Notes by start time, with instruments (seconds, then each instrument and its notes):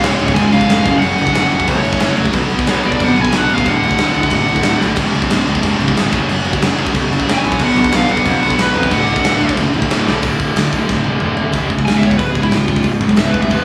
Already playing: distorted electric guitar C#2 G#2 C#3
0.03 picked electric bass C#1, distorted electric guitar C#2 G#2 C#3, lead electric guitar G#3 C#5, snare, crash
0.19 picked electric bass C#1, distorted electric guitar C#2 G#2 C#3, crash
0.28 kick
0.34 picked electric bass F#1, distorted electric guitar C#2, lead electric guitar F4 G#5, kick, crash
0.38 distorted electric guitar G#2 C#3
0.51 picked electric bass C#1, distorted electric guitar C#2 G#2 C#3, lead electric guitar C#4 F5, crash
0.61 kick
0.69 picked electric bass F1, distorted electric guitar C#2 G#2 C#3, snare, crash
0.84 picked electric bass F#1, distorted electric guitar F#2 C#3 F#3, kick, crash
0.99 lead electric guitar C#4 F#5, crash
1.03 picked electric bass F#1, distorted electric guitar F#2 C#3 F#3
1.18 picked electric bass F#1, distorted electric guitar F#2 C#3 F#3, crash
1.27 kick
1.34 picked electric bass F#1, distorted electric guitar F#2 C#3 F#3, lead electric guitar C#4 F#5, snare, crash
1.51 picked electric bass F#1, distorted electric guitar F#2 C#3 F#3, crash
1.60 kick
1.67 picked electric bass B1, distorted electric guitar F#2 C#3 F#3, lead electric guitar A3 C#5, kick, crash
1.84 picked electric bass F#1, distorted electric guitar F#2 C#3 F#3, crash
1.93 kick
1.98 picked electric bass F#1, distorted electric guitar F#2 C#3 F#3, snare, crash
2.03 distorted electric guitar F#2
2.17 picked electric bass F1, distorted electric guitar F#2 C#3 F#3, crash
2.26 kick
2.31 picked electric bass B1, distorted electric guitar B2 F#3 B3, kick, crash
2.36 distorted electric guitar B3
2.50 picked electric bass B1, distorted electric guitar B2 F#3 B3, crash
2.59 kick
2.67 picked electric bass B1, distorted electric guitar B2 F#3 B3, lead electric guitar F#3 C#5, snare, crash
2.83 picked electric bass B1, distorted electric guitar B2 F#3 B3, lead electric guitar B3 D5, crash
2.92 kick
3.00 picked electric bass F2, distorted electric guitar B2 F#3 B3, lead electric guitar D4 F#5, kick, crash
3.16 picked electric bass B1, distorted electric guitar B2 F#3 B3, crash
3.21 lead electric guitar F4 G#5, kick
3.32 picked electric bass B1, distorted electric guitar B2 F#3 B3, lead electric guitar D4, snare, crash
3.37 lead electric guitar F#5
3.48 picked electric bass A1, distorted electric guitar B2 F#3 B3, crash
3.53 lead electric guitar C#4 F5
3.58 kick
3.65 picked electric bass D1, distorted electric guitar D2 A2 D3, lead electric guitar F#5, kick, crash
3.70 lead electric guitar D4
3.83 picked electric bass D1, distorted electric guitar D2 A2 D3, crash
3.91 kick
3.98 picked electric bass D1, distorted electric guitar D2 A2 D3, snare, crash
4.14 picked electric bass D1, distorted electric guitar D2 A2 D3, crash
4.23 kick
4.30 picked electric bass F#1, distorted electric guitar D2 A2 D3, kick, crash
4.35 lead electric guitar D4 F#5
4.48 picked electric bass D1, distorted electric guitar D2 A2 D3, crash
4.56 kick
4.63 picked electric bass D1, distorted electric guitar D2 A2 D3, snare, crash
4.79 picked electric bass B1, distorted electric guitar D2 A2 D3, snare
4.96 picked electric bass C#1, distorted electric guitar C#2 G#2 C#3, kick, splash, crash
5.14 picked electric bass C#1, distorted electric guitar C#2 G#2 C#3, crash
5.22 kick
5.30 picked electric bass C#1, distorted electric guitar C#2 G#2 C#3, snare, crash
5.46 picked electric bass C#1, distorted electric guitar C#2 G#2 C#3, crash
5.55 kick
5.63 picked electric bass F#1, distorted electric guitar C#2 G#2 C#3, kick, crash
5.78 picked electric bass C#1, distorted electric guitar C#2 G#2 C#3, crash
5.88 kick
5.95 picked electric bass G#1, distorted electric guitar C#2 G#2 C#3, snare, crash
6.11 picked electric bass F#1, distorted electric guitar F#2 C#3 F#3, kick, crash
6.15 distorted electric guitar F#3
6.28 picked electric bass F#1, distorted electric guitar F#2 C#3 F#3, crash
6.44 picked electric bass F#1, distorted electric guitar F#2 C#3 F#3, crash
6.53 kick
6.61 picked electric bass F#1, distorted electric guitar F#2 C#3 F#3, snare, crash
6.77 picked electric bass F#1, distorted electric guitar F#2 C#3 F#3, crash
6.87 kick
6.93 picked electric bass B1, distorted electric guitar F#2 C#3 F#3, kick, crash
7.10 picked electric bass F#1, distorted electric guitar F#2 C#3 F#3, crash
7.20 kick
7.27 picked electric bass F#1, distorted electric guitar F#2 C#3 F#3, snare, crash
7.31 lead electric guitar C#4 G#5
7.43 picked electric bass A#1, distorted electric guitar F#2 C#3 F#3, crash
7.52 kick
7.59 picked electric bass B1, distorted electric guitar B2 F#3 B3, lead electric guitar D4, kick, crash
7.63 distorted electric guitar B3, lead electric guitar F#5
7.75 picked electric bass B1, distorted electric guitar B2 F#3 B3, crash
7.84 kick
7.91 picked electric bass B1, distorted electric guitar B2 F#3 B3, lead electric guitar F5, snare, crash
7.96 lead electric guitar D4
8.08 picked electric bass B1, distorted electric guitar B2 F#3 B3, lead electric guitar D4 F#5, crash
8.17 kick
8.26 picked electric bass F2, distorted electric guitar B2 F#3 B3, kick, crash
8.41 picked electric bass B1, distorted electric guitar B2 F#3 B3, crash
8.50 kick
8.58 picked electric bass B1, distorted electric guitar B2 F#3 B3, lead electric guitar F#3 B4, snare, crash
8.73 picked electric bass F2, distorted electric guitar B2 F#3 B3, crash
8.83 kick
8.89 picked electric bass D1, distorted electric guitar D2 A2 D3, lead electric guitar D4 F#5, kick, crash
9.08 picked electric bass D1, distorted electric guitar D2 A2 D3, crash
9.16 kick
9.24 picked electric bass D1, distorted electric guitar D2 A2 D3, snare, crash
9.41 picked electric bass D1, distorted electric guitar D2 A2 D3, crash
9.49 kick
9.57 picked electric bass F#1, distorted electric guitar D2 A2 D3, kick, crash
9.73 picked electric bass D1, distorted electric guitar D2 A2 D3, crash
9.82 kick
9.90 picked electric bass D1, distorted electric guitar D2 A2 D3, snare, crash
10.06 picked electric bass B1, distorted electric guitar D2 A2 D3, snare
10.23 picked electric bass D1, distorted electric guitar D2 A2 D3, kick, open hi-hat
10.40 picked electric bass D1, kick, open hi-hat
10.56 picked electric bass D2, snare, open hi-hat
10.73 picked electric bass D1, distorted electric guitar D2 A2 D3, kick, open hi-hat
10.89 picked electric bass D1, kick, snare
11.04 picked electric bass D1, distorted electric guitar D2 A2 D3, high tom
11.20 picked electric bass D1, distorted electric guitar D2 A2 D3, mid tom
11.37 picked electric bass D1, floor tom
11.52 picked electric bass C#1, distorted electric guitar C#2 G#2 C#3, kick, open hi-hat
11.70 picked electric bass C#2, distorted electric guitar C#2 G#2, kick
11.79 distorted electric guitar C#2 G#2, kick
11.85 picked electric bass C#1, distorted electric guitar C#2 G#2, lead electric guitar G#5, snare, open hi-hat
11.95 distorted electric guitar C#2 G#2, lead electric guitar E5
12.03 picked electric bass C#1, distorted electric guitar C#2 G#2, lead electric guitar C#5, kick
12.11 distorted electric guitar C#2 G#2, kick
12.17 picked electric bass C#1, distorted electric guitar C#2 G#2, lead electric guitar B4, kick, open hi-hat
12.30 lead electric guitar G#4
12.35 picked electric bass C#1, distorted electric guitar C#2 G#2, kick
12.42 distorted electric guitar C#2 G#2, lead electric guitar E4, kick
12.51 picked electric bass C#1, distorted electric guitar C#2 G#2, lead electric guitar F4, snare, open hi-hat
12.68 picked electric bass C#2, distorted electric guitar C#2 G#2, kick
12.76 distorted electric guitar C#2 G#2, kick
12.83 picked electric bass C#1, distorted electric guitar C#2 G#2, kick, open hi-hat
13.01 picked electric bass B1, distorted electric guitar C#2 G#2, kick
13.09 distorted electric guitar C#2 G#2, kick
13.16 picked electric bass C#1, distorted electric guitar C#2 G#2, lead electric guitar E5, snare, open hi-hat
13.28 distorted electric guitar C#2 G#2, lead electric guitar B4
13.34 picked electric bass D1, distorted electric guitar C#2 G#2, kick
13.41 distorted electric guitar C#2 G#2, lead electric guitar E5, kick
13.50 picked electric bass F1, distorted electric guitar F2 C3 F3, lead electric guitar B4, kick, open hi-hat